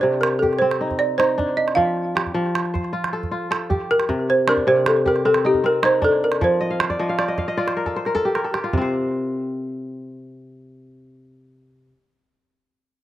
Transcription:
0.00 1.82 C3 medium
0.00 0.87 D4 medium
0.00 0.68 F4 medium
0.00 0.42 G4 medium
0.00 0.19 A4 medium
0.00 0.22 C5 medium
0.21 0.42 A#4 medium
0.21 calabash click medium
0.39 1.84 G4 medium
0.39 0.60 A4 medium
0.43 calabash thump medium
0.53 calabash click soft
0.59 2.42 C4 medium
0.59 1.00 C5 medium
0.71 calabash click soft
0.81 1.19 D#4 medium
0.91 calabash thump soft
0.99 1.19 D5 loud
1.18 2.81 D#4 medium
1.18 1.54 C5 medium
1.18 calabash click medium
1.38 3.06 D4 medium
1.38 calabash thump medium
1.57 1.77 D#5 loud
1.68 calabash click soft
1.75 2.33 F3 medium
1.75 2.30 F5 medium
1.75 calabash thump medium
1.75 calabash click soft
2.15 3.57 G4 medium
2.15 calabash click medium
2.26 calabash thump soft
2.34 4.14 F3 medium
2.55 calabash click medium
2.65 calabash click soft
2.74 3.93 C5 medium
2.74 calabash thump medium
2.84 calabash click soft
2.93 3.31 F4 medium
3.04 calabash click soft
3.13 3.50 A4 medium
3.23 calabash thump soft
3.31 4.83 F4 medium
3.51 4.82 A4 medium
3.51 calabash click medium
3.70 5.05 G4 medium
3.70 calabash thump medium
3.91 4.30 A#4 loud
4.00 calabash click soft
4.09 4.66 C3 medium
4.09 calabash thump medium
4.09 calabash click soft
4.30 4.49 C5 medium
4.47 5.51 D4 medium
4.47 4.68 A#4 loud
4.47 calabash click medium
4.57 calabash thump soft
4.67 6.46 C3 medium
4.67 4.85 C5 medium
4.86 5.05 A4 medium
4.86 calabash click medium
4.97 calabash click soft
5.06 6.47 G4 medium
5.06 5.27 A#4 medium
5.06 calabash thump medium
5.16 calabash click soft
5.25 5.63 C4 medium
5.25 5.45 A4 loud
5.34 calabash click medium
5.45 5.82 D#4 medium
5.45 5.65 G4 medium
5.54 calabash thump soft
5.64 7.44 C4 medium
5.64 5.83 A#4 medium
5.83 6.96 D#4 medium
5.83 6.04 C5 loud
5.83 calabash click medium
6.02 6.67 D4 medium
6.02 6.21 A4 medium
6.02 calabash thump medium
6.24 6.43 A#4 medium
6.32 calabash click soft
6.41 6.98 F3 medium
6.41 8.32 C5 medium
6.41 calabash thump medium
6.61 6.96 D#5 medium
6.70 7.09 F5 medium
6.80 7.67 C5 medium
6.80 calabash click medium
6.90 7.18 D5 medium
6.90 calabash thump soft
6.99 8.78 F3 medium
6.99 7.25 D#5 medium
6.99 calabash click soft
7.09 7.38 F5 medium
7.19 7.54 D5 medium
7.19 calabash click medium
7.28 7.47 D#5 medium
7.28 calabash click soft
7.38 8.38 F5 medium
7.38 calabash thump medium
7.38 calabash click soft
7.48 8.55 D#5 medium
7.57 8.63 F4 medium
7.57 8.68 D5 medium
7.57 calabash click soft
7.67 7.96 C5 medium
7.67 calabash click soft
7.77 8.06 A#4 medium
7.86 8.12 A4 medium
7.86 calabash thump soft
7.96 8.81 C5 medium
8.05 8.34 A#4 medium
8.05 calabash click soft
8.15 8.44 A4 medium
8.15 calabash thump soft
8.25 8.53 G4 medium
8.35 9.62 A#4 medium
8.35 calabash click soft
8.44 9.76 A4 medium
8.54 9.95 G4 medium
8.54 calabash click soft
8.64 10.15 F4 medium
8.73 11.91 C3 medium
8.73 calabash thump medium
8.77 11.95 C4 medium
8.77 11.99 C5 medium

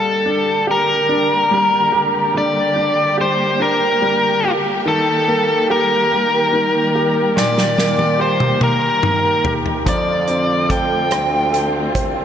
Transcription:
0.00 4.82 D3 medium
0.00 1.50 G3 soft
0.00 4.82 G3 medium
0.00 9.83 A#3 medium
0.00 9.83 G4 medium
0.00 0.65 A4 medium
0.26 1.08 D4 soft
0.67 1.91 G4 soft
0.67 2.37 A#4 medium
1.09 2.72 D4 soft
1.51 3.14 G3 soft
1.92 3.16 G4 soft
2.34 4.81 D3 soft
2.34 3.16 D5 medium
2.76 3.58 D4 soft
3.18 4.43 G4 soft
3.18 3.63 C5 medium
3.60 4.81 D4 soft
3.60 4.51 A#4 medium
4.02 4.83 G3 soft
4.44 4.85 G4 soft
4.85 6.51 D#3 soft
4.85 9.83 D#3 medium
4.85 9.83 G3 medium
4.85 5.66 A4 medium
5.28 6.10 A#3 soft
5.70 6.94 G4 soft
5.70 7.42 A#4 medium
6.11 7.74 A#3 soft
6.53 8.16 D#3 soft
6.95 8.18 G4 soft
7.36 9.83 A#2 medium
7.36 8.21 D5 medium
7.36 snare soft
7.58 snare soft
7.78 8.58 A#3 soft
7.78 snare soft
7.99 high tom soft
8.19 9.44 G4 soft
8.19 8.59 C5 medium
8.40 mid tom medium
8.60 9.82 A#3 soft
8.60 9.52 A#4 medium
8.60 mid tom medium
9.03 9.84 D#3 soft
9.03 mid tom medium
9.45 9.86 G4 soft
9.45 floor tom medium
9.66 floor tom medium
9.86 10.66 F2 medium
9.86 12.25 D3 medium
9.86 12.25 F3 medium
9.86 12.25 A3 medium
9.86 12.25 C4 medium
9.86 12.25 F4 medium
9.86 10.74 D5 medium
9.86 kick medium
9.86 closed hi-hat medium
10.28 11.91 C4 soft
10.28 closed hi-hat soft
10.69 11.09 F2 medium
10.69 11.51 A4 soft
10.69 12.25 G5 medium
10.69 kick medium
10.69 closed hi-hat medium
11.11 11.91 D2 medium
11.11 11.93 C5 soft
11.11 cross-stick medium
11.11 closed hi-hat medium
11.53 12.25 A4 soft
11.53 closed hi-hat soft
11.95 12.25 C2 medium
11.95 12.25 C5 soft
11.95 kick medium
11.95 closed hi-hat medium

